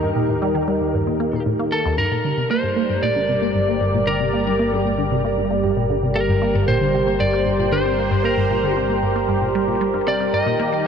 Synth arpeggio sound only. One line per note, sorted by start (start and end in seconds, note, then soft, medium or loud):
0.03 0.10 G2 medium
0.16 0.23 A#2 medium
0.29 0.36 A2 medium
0.42 0.53 G3 medium
0.55 0.59 D#3 loud
0.68 0.79 G3 medium
0.81 0.88 D#2 medium
0.94 1.02 G2 medium
1.07 1.15 A#2 medium
1.20 1.28 A#3 medium
1.33 1.38 A#2 medium
1.46 1.54 A2 medium
1.59 1.71 A#3 medium
1.72 1.80 A#3 medium
1.85 1.97 D#2 loud
1.98 2.06 G2 medium
2.11 2.19 A#2 medium
2.24 2.32 D3 medium
2.37 2.45 C3 medium
2.51 2.62 A#3 medium
2.63 2.68 G2 medium
2.76 2.88 A#3 medium
2.89 2.97 G2 medium
3.03 3.10 A#2 medium
3.16 3.23 D3 medium
3.29 3.36 C3 medium
3.42 3.53 A#3 medium
3.55 3.59 G2 medium
3.68 3.79 A#3 medium
3.81 3.88 G2 medium
3.94 4.02 A#2 medium
4.07 4.15 D3 medium
4.20 4.28 C3 medium
4.33 4.44 A#3 medium
4.46 4.51 G2 medium
4.59 4.71 A#3 medium
4.72 4.80 G2 medium
4.85 4.93 A#2 medium
4.98 5.06 D3 medium
5.12 5.19 C3 medium
5.25 5.36 A#3 medium
5.38 5.42 G2 medium
5.51 5.62 A#3 medium
5.64 5.71 G2 medium
5.77 5.84 A#2 medium
5.90 5.97 D3 medium
6.03 6.10 C3 medium
6.16 6.27 A#3 medium
6.29 6.33 G2 medium
6.42 6.53 A#3 medium
6.55 6.63 G2 medium
6.68 6.76 A#2 medium
6.81 6.89 D3 medium
6.94 7.02 C3 medium
7.07 7.18 A#3 medium
7.20 7.25 G2 medium
7.33 7.45 A#3 medium
7.46 7.54 G2 medium
7.59 7.67 A#2 medium
7.72 7.80 D3 medium
7.86 7.93 C3 medium
7.99 8.10 A#3 medium
8.11 8.16 G2 medium
8.24 8.36 A#3 medium
8.38 8.45 G2 medium
8.51 8.58 A#2 medium
8.64 8.71 D3 medium
8.77 8.84 C3 medium
8.90 9.01 A#3 medium
9.03 9.07 G2 medium
9.16 9.27 A#3 medium
9.29 9.36 G2 medium
9.42 9.49 A#2 medium
9.55 9.60 G3 medium
9.68 9.75 A#2 medium
9.81 9.89 G3 medium
9.94 9.99 G2 medium
10.07 10.15 C3 medium
10.20 10.28 C3 medium
10.33 10.41 G2 medium
10.46 10.54 A#2 medium
10.59 10.71 A#3 medium
10.72 10.84 G3 medium